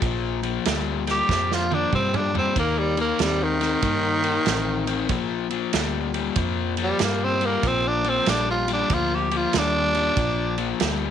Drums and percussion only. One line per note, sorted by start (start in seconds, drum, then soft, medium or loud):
0.02 kick loud
0.02 ride medium
0.43 ride medium
0.65 snare loud
0.65 ride medium
1.07 snare soft
1.07 ride medium
1.29 kick loud
1.29 snare medium
1.52 snare medium
1.72 high tom medium
1.93 kick medium
1.93 mid tom medium
2.14 mid tom medium
2.35 floor tom medium
2.56 kick loud
2.56 ride medium
2.97 ride medium
3.19 snare loud
3.19 ride medium
3.61 snare soft
3.61 ride medium
3.82 kick loud
3.82 ride medium
4.24 ride medium
4.46 snare loud
4.46 ride medium
4.87 ride medium
5.09 kick loud
5.09 ride medium
5.50 ride medium
5.73 snare loud
5.73 ride medium
6.14 ride medium
6.36 kick loud
6.36 ride medium
6.77 ride medium
6.99 snare loud
6.99 ride medium
7.41 ride medium
7.63 kick loud
7.63 ride medium
8.04 ride medium
8.26 snare loud
8.26 ride medium
8.68 ride medium
8.90 kick loud
8.90 ride medium
9.31 ride medium
9.53 snare loud
9.53 ride medium
9.94 ride medium
10.17 kick loud
10.17 ride medium
10.58 ride medium
10.80 snare loud
10.80 ride medium